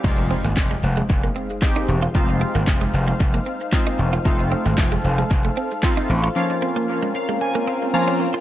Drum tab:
CC |x---------------|----------------|----------------|----------------|
SH |xxxxxxxxxxxxxxxx|xxxxxxxxxxxxxxxx|xxxxxxxxxxxxxxxx|----------------|
CP |----x-------x---|----x-------x---|----x-------x---|----------------|
SD |----o-------o---|----o-------o---|----o-------o---|----------------|
BD |o---o---o---o---|o---o---o---o---|o---o---o---o---|----------------|